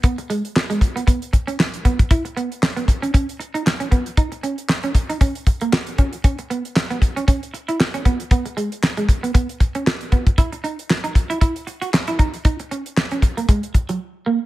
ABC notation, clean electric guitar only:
X:1
M:4/4
L:1/16
Q:"Swing 16ths" 1/4=116
K:G#m
V:1 name="Clean electric guitar"
B, z G, z2 G, z B, B, z2 C z2 B, z | E z B, z2 B, z C C z2 D z C B, z | D z C z2 C z D C z2 A, z2 C z | C z B, z2 B, z C C z2 E z C B, z |
B, z G, z2 G, z B, B, z2 C z2 B, z | E z D z2 D z E E z2 F z E D z | D z C z2 C z A, G, z2 F, z2 A, z |]